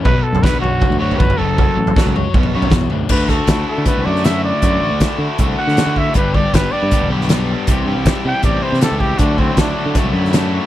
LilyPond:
<<
  \new Staff \with { instrumentName = "Trumpet" } { \time 4/4 \key b \minor \tempo 4 = 158 b'8 a'8 b'8 fis'4 fis'8 b'8 a'8~ | a'4. r2 r8 | \key d \mixolydian b'8 a'4 a'8 b'8 d''8 e''8 d''8~ | d''4. r4 fis''4 e''8 |
b'8 d''8 b'8 d''4 r4. | r4. g''8 d''8 c''8 a'8 g'8 | d'8 c'8 d'4 r2 | }
  \new Staff \with { instrumentName = "Overdriven electric guitar" } { \time 4/4 \key b \minor b,4 d'8 cis''8 fis'8 cis''8 fis'8 fis8 | fis4 fis'8 cis''8 b,8 cis''8 fis'8 d'8 | \key d \mixolydian <d a d' fis'>8 <a d' fis'>8 <d a d' fis'>8 <a d' fis'>8 <d a d' fis'>8 <a d' fis'>8 <d a d' fis'>4 | <d a d' fis'>8 <a d' fis'>8 <d a d' fis'>8 <a d' fis'>8 <d a d' fis'>8 <a d' fis'>8 <d a d' fis'>4 |
<g, d g b d' g'>8 <g b d' g'>8 <g b d' g'>8 <g b d' g'>8 <g, d g b d' g'>8 <g b d' g'>8 <g b d' g'>4 | <c e g e' g'>8 <g e' g'>8 <e g e' g'>8 <g e' g'>8 <c e g e' g'>8 <g e' g'>8 <e g e' g'>4 | <d fis a d' fis'>8 <a d' fis'>8 <fis a d' fis'>8 <a d' fis'>8 <d fis a d' fis'>8 <a d' fis'>8 <fis a d' fis'>4 | }
  \new Staff \with { instrumentName = "Overdriven electric guitar" } { \clef bass \time 4/4 \key b \minor <b, fis b>8 <b, fis>8 <b, fis b>8 <b, fis>8 <b, fis>8 <b, fis b>8 <b, fis>8 <fis, cis fis>8 | <fis, cis fis>8 <fis, cis>8 <fis, cis fis>8 <fis, cis>8 <b, fis b>8 <b, fis b>8 <b, fis>8 <b, fis>8 | \key d \mixolydian d8 fis'8 e'8 d8 a8 fis'8 e'8 d8 | d8 fis'8 e'8 d8 a8 fis'8 e'8 d8 |
g,8 g'8 d'8 g8 b8 g'8 d'8 g8 | c8 e'8 d'8 g8 c'8 e'8 d'8 g8 | d8 e'8 d'8 fis8 a8 e'8 d'8 fis8 | }
  \new Staff \with { instrumentName = "Fingered electric bass" } { \clef bass \time 4/4 \key b \minor b,,8 r16 fis,8 r16 b,,8. d,8. g,,8 fis,,8~ | fis,,8 a,,8 r16 cis,8. b,,8 fis,8 e,8 d,8 | \key d \mixolydian d,4 d,8 r16 d16 r16 c,16 fis,4. | fis,8 a,,16 d,8 r16 d16 r16 c,8 r16 d8 d8. |
g,,4 g,,8 r16 g,16 r16 e,,16 b,,4. | c,8 g,16 c,8 r16 c16 r16 a,,8 r16 c8 cis,8. | d,4 d,8 r16 d16 r16 c,16 fis,4. | }
  \new DrumStaff \with { instrumentName = "Drums" } \drummode { \time 4/4 <bd tomfh>8. tomfh16 <bd sn>16 tomfh16 toml8 <bd tomfh>16 toml8 tomfh16 <bd toml>16 tomfh8. | <bd tomfh>8. tomfh16 <bd sn>16 tomfh16 toml8 <bd tomfh>16 toml8 tomfh16 <bd sn toml>16 tomfh16 toml8 | <cymc bd>8 <bd sn>8 <hh bd sn>4 <hh bd>8. sn16 <hh sn>4 | <hh bd>4 <hh bd sn>4 <hh bd>8. sn16 <hh sn>8 bd8 |
<hh bd>8 bd8 <hh bd sn>4 <hh bd>8. sn16 <hh sn>4 | <hh bd>4 <hh bd sn>4 <hh bd>8. sn16 <hh sn>8 bd8 | <hh bd>8 bd8 <hh bd sn>4 <hh bd>8. sn16 <hh sn>4 | }
>>